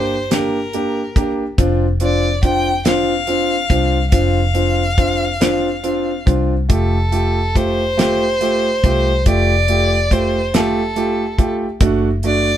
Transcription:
Already playing: fingered electric bass G1, upright piano A#3 D4 G4, violin C5
0.31 upright piano A#3 D4 G4, violin A#4, snare, closed hi-hat
0.73 upright piano A#3 D4 G4, closed hi-hat
1.16 fingered electric bass C2, upright piano A#3 D4 G4, kick, closed hi-hat
1.58 fingered electric bass F1, upright piano C4 D4 F4, kick, closed hi-hat
2.00 upright piano C4 D4 F4, violin D5, closed hi-hat
2.43 upright piano C4 D4 F4, violin G5, kick, closed hi-hat
2.85 upright piano C4 D4 F4, violin F5, snare, closed hi-hat
3.27 upright piano C4 D4 F4, closed hi-hat
3.70 fingered electric bass C2, upright piano C4 D4 F4, kick, closed hi-hat
4.12 fingered electric bass F1, upright piano C4 D4 F4, violin F5, kick, closed hi-hat
4.54 upright piano C4 D4 F4, closed hi-hat
4.97 upright piano C4 D4 F4, kick, closed hi-hat
5.40 upright piano C4 D4 F4, snare, closed hi-hat
5.83 upright piano C4 D4 F4, closed hi-hat
6.26 fingered electric bass C2, upright piano C4 D4 F4, kick, closed hi-hat
6.69 fingered electric bass F1, upright piano A3 F4 G4, violin A4, kick, closed hi-hat
7.12 upright piano A3 F4 G4, closed hi-hat
7.55 upright piano A3 F4 G4, violin C5, kick, closed hi-hat
7.97 upright piano A3 F4 G4, snare, closed hi-hat
8.41 upright piano A3 F4 G4, closed hi-hat
8.84 fingered electric bass C2, upright piano A3 F4 G4, kick, closed hi-hat
9.26 fingered electric bass F1, upright piano A3 F4 G4, violin D5, kick, closed hi-hat
9.68 upright piano A3 F4 G4, closed hi-hat
10.11 upright piano A3 F4 G4, violin C5, kick, closed hi-hat
10.54 upright piano A3 F4 G4, violin A4, snare, closed hi-hat
10.96 upright piano A3 F4 G4, closed hi-hat
11.38 fingered electric bass G1, upright piano A3 F4 G4, kick, closed hi-hat
11.81 fingered electric bass F#1, upright piano A3 D4 F#4, kick, closed hi-hat
12.23 upright piano A3 D4 F#4, violin D5, closed hi-hat

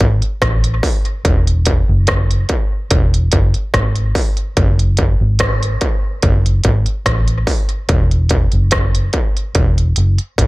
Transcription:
0.01 fingered electric bass G#1, kick
0.22 closed hi-hat
0.42 fingered electric bass A1, kick, cross-stick, closed hi-hat
0.64 closed hi-hat
0.83 kick, open hi-hat
1.05 closed hi-hat
1.25 fingered electric bass E1, kick, closed hi-hat
1.47 closed hi-hat
1.66 kick, closed hi-hat
1.89 fingered electric bass F#1
2.07 kick, cross-stick, closed hi-hat
2.31 closed hi-hat
2.49 kick, closed hi-hat
2.91 fingered electric bass E1, kick, closed hi-hat
3.14 closed hi-hat
3.32 fingered electric bass F#1, kick, closed hi-hat
3.54 closed hi-hat
3.74 fingered electric bass G#1, kick, cross-stick, closed hi-hat
3.96 closed hi-hat
4.15 kick, open hi-hat
4.37 closed hi-hat
4.57 fingered electric bass F#1, kick, closed hi-hat
4.79 closed hi-hat
4.97 kick, closed hi-hat
5.21 fingered electric bass G#1
5.39 kick, cross-stick, closed hi-hat
5.63 closed hi-hat
5.81 kick, closed hi-hat
6.22 fingered electric bass F#1, kick, closed hi-hat
6.46 closed hi-hat
6.64 fingered electric bass G#1, kick, closed hi-hat
6.86 closed hi-hat
7.06 fingered electric bass A1, kick, cross-stick, closed hi-hat
7.28 closed hi-hat
7.47 kick, open hi-hat
7.69 closed hi-hat
7.89 fingered electric bass E1, kick, closed hi-hat
8.11 closed hi-hat
8.29 kick, closed hi-hat
8.52 fingered electric bass F#1, closed hi-hat
8.71 kick, cross-stick, closed hi-hat
8.95 closed hi-hat
9.13 kick, closed hi-hat
9.37 closed hi-hat
9.55 fingered electric bass E1, kick, closed hi-hat
9.78 closed hi-hat
9.96 fingered electric bass F#1, closed hi-hat
10.18 closed hi-hat
10.38 fingered electric bass G#1, kick, closed hi-hat

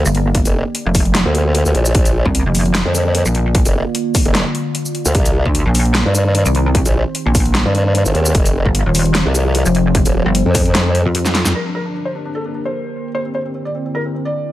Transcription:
Already playing: ambient pad D3 A#3 G4 D5
0.05 wobble bass G1, shaker
0.15 closed hi-hat
0.35 kick, closed hi-hat
0.45 wobble bass F1, closed hi-hat, shaker
0.75 closed hi-hat
0.86 wobble bass F1
0.95 kick, open hi-hat, shaker
1.05 closed hi-hat
1.15 snare, closed hi-hat
1.25 wobble bass D2
1.35 closed hi-hat
1.55 closed hi-hat
1.65 wobble bass D2, shaker
1.75 wobble bass A#1, closed hi-hat
1.85 shaker
1.95 wobble bass A#1, ambient pad A#3 F4, kick, closed hi-hat
2.05 closed hi-hat, shaker
2.25 wobble bass C2, kick
2.35 closed hi-hat
2.46 wobble bass F1
2.55 open hi-hat, shaker
2.66 closed hi-hat
2.75 snare, closed hi-hat
2.85 wobble bass F2
2.95 closed hi-hat, shaker
3.15 closed hi-hat
3.25 wobble bass A#1, shaker
3.35 closed hi-hat
3.55 kick, closed hi-hat
3.65 wobble bass F1, closed hi-hat, shaker
3.95 closed hi-hat
4.15 kick, open hi-hat, shaker
4.25 wobble bass F1, closed hi-hat
4.35 snare, closed hi-hat
4.55 closed hi-hat
4.75 closed hi-hat
4.85 shaker
4.95 closed hi-hat
5.05 wobble bass D2, shaker
5.15 wobble bass C2, ambient pad D#3 C4 G4 C5, kick, closed hi-hat
5.25 closed hi-hat, shaker
5.45 wobble bass D2, kick
5.55 closed hi-hat
5.66 wobble bass A#1
5.75 open hi-hat, shaker
5.85 closed hi-hat
5.95 snare, closed hi-hat
6.06 wobble bass G2
6.15 closed hi-hat, shaker
6.35 closed hi-hat
6.46 wobble bass C2, shaker
6.55 closed hi-hat
6.75 kick, closed hi-hat
6.86 wobble bass A#1, closed hi-hat, shaker
7.15 closed hi-hat
7.26 wobble bass A#1
7.35 kick, open hi-hat, shaker
7.46 closed hi-hat
7.55 snare, closed hi-hat
7.65 wobble bass G2
7.75 closed hi-hat
7.95 closed hi-hat
8.05 wobble bass G1, shaker
8.15 wobble bass D#2, closed hi-hat
8.25 shaker
8.35 wobble bass F1, ambient pad F3, kick, closed hi-hat
8.46 closed hi-hat, shaker
8.65 wobble bass G1, kick
8.75 closed hi-hat
8.86 wobble bass D#1
8.95 open hi-hat, shaker
9.05 closed hi-hat
9.15 snare, closed hi-hat
9.26 wobble bass C2
9.35 closed hi-hat, shaker
9.55 closed hi-hat
9.65 wobble bass F1, shaker
9.75 closed hi-hat
9.95 kick, closed hi-hat
10.05 wobble bass D#1, closed hi-hat, shaker
10.26 wobble bass G1
10.35 closed hi-hat
10.46 wobble bass F2
10.55 kick, open hi-hat, shaker
10.66 closed hi-hat
10.75 snare, closed hi-hat
10.95 closed hi-hat
11.06 wobble bass F2
11.15 closed hi-hat
11.26 snare, shaker
11.35 snare, closed hi-hat
11.45 wobble bass F2, snare, shaker
11.55 ambient pad D3 A#3 G4 A#4, felt piano A#4, crash
11.66 felt piano D4
11.75 felt piano A#4
11.85 felt piano D4
11.95 felt piano D4
12.05 felt piano C5
12.15 felt piano D4
12.25 felt piano D4
12.35 felt piano A4
12.45 felt piano D4
12.55 felt piano D4
12.65 felt piano C5
13.15 ambient pad D3 C4 E4, felt piano C5
13.25 felt piano C4
13.35 felt piano C5
13.45 felt piano C4
13.55 felt piano C4
13.65 felt piano D5
13.75 felt piano C4
13.85 felt piano C4
13.95 felt piano A#4
14.05 felt piano C4
14.15 felt piano C4
14.25 felt piano D5

